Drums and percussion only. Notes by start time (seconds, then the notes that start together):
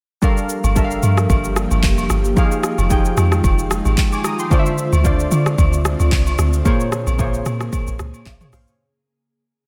0.23 kick, high agogo, shaker
0.37 shaker
0.49 shaker
0.64 high agogo, shaker
0.76 kick, shaker
0.91 shaker
1.03 high agogo, shaker
1.18 cross-stick, shaker
1.30 kick, high agogo, shaker
1.44 shaker
1.56 cross-stick, shaker
1.71 high agogo, shaker
1.83 kick, clap, shaker
1.98 high agogo, shaker
2.10 cross-stick, shaker
2.25 shaker
2.37 kick, high agogo, shaker
2.52 shaker
2.63 cross-stick, shaker
2.78 high agogo, shaker
2.90 kick, shaker
3.05 shaker
3.17 cross-stick, high agogo, shaker
3.32 cross-stick, shaker
3.44 kick, high agogo, shaker
3.59 shaker
3.71 cross-stick, shaker
3.85 high agogo, shaker
3.98 kick, clap, shaker
4.12 high agogo, shaker
4.24 cross-stick, shaker
4.39 shaker
4.51 kick, high agogo, shaker
4.66 shaker
4.78 shaker
4.93 high agogo, shaker
5.05 kick, shaker
5.20 shaker
5.31 high agogo, shaker
5.46 cross-stick, shaker
5.58 kick, high agogo, shaker
5.73 shaker
5.85 cross-stick, shaker
6.00 high agogo, shaker
6.12 kick, clap, shaker
6.27 high agogo, shaker
6.39 cross-stick, shaker
6.53 shaker
6.65 kick, high agogo, shaker
6.80 shaker
6.92 cross-stick, shaker
7.07 high agogo, shaker
7.19 kick, low woodblock, shaker
7.34 shaker
7.46 cross-stick, high agogo, shaker
7.61 cross-stick, shaker
7.73 kick, high agogo, shaker
7.87 shaker
7.99 cross-stick, shaker
8.14 high agogo, shaker
8.26 kick, clap, low woodblock, shaker
8.41 mid tom, high agogo, shaker
8.53 cross-stick, open hi-hat, shaker
8.67 shaker